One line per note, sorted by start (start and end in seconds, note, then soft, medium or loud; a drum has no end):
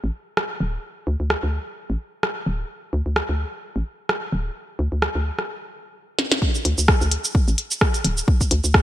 0.04 0.11 A1 medium
0.37 cross-stick medium
0.60 0.78 D1 medium
1.07 1.16 D2 medium
1.20 1.36 D2 medium
1.30 cross-stick medium
1.43 1.59 D2 medium
1.90 1.97 A1 medium
2.23 cross-stick medium
2.46 2.64 D1 medium
2.93 3.02 D2 loud
3.06 3.22 D2 medium
3.16 cross-stick medium
3.29 3.45 D2 medium
3.76 3.83 A1 medium
4.09 cross-stick medium
4.33 4.50 D1 medium
4.79 4.88 D2 loud
4.92 5.08 D2 medium
5.02 cross-stick medium
5.15 5.31 D2 medium
5.39 cross-stick medium
6.19 snare medium
6.32 snare medium
6.42 kick loud
6.55 shaker soft
6.65 6.74 D2 loud
6.65 closed hi-hat medium
6.78 6.94 D2 medium
6.78 shaker medium
6.88 kick loud
6.88 cross-stick loud
7.01 7.17 D2 medium
7.01 shaker soft
7.12 closed hi-hat medium
7.25 shaker medium
7.35 kick loud
7.48 7.55 A1 medium
7.48 shaker soft
7.58 closed hi-hat medium
7.71 shaker medium
7.81 kick loud
7.81 cross-stick loud
7.94 closed hi-hat soft
7.94 shaker soft
8.05 8.22 D1 loud
8.05 closed hi-hat medium
8.17 shaker medium
8.28 kick loud
8.41 kick medium
8.41 shaker soft
8.51 8.60 D2 loud
8.51 closed hi-hat loud
8.64 8.80 D2 medium
8.64 shaker medium
8.74 kick loud
8.74 cross-stick loud